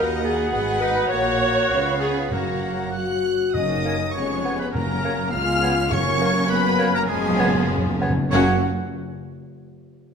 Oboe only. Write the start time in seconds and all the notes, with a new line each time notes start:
Already playing: D#4
0.23 B3
0.82 D#4
1.10 F#4
2.00 B3
2.32 A#3
2.92 F#5
3.54 D#5
4.14 C#5
4.59 B4
4.72 A#4
5.31 F5
5.92 C#5
6.50 B4
6.93 A#4
7.08 G#4
8.30 C#5